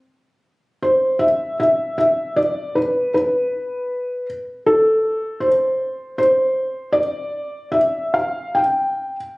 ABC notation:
X:1
M:3/4
L:1/16
Q:1/4=77
K:C
V:1 name="Felt piano"
z4 c2 e2 e2 e2 | d2 B2 B6 z2 | A4 c4 c4 | d4 e2 f2 g3 z |]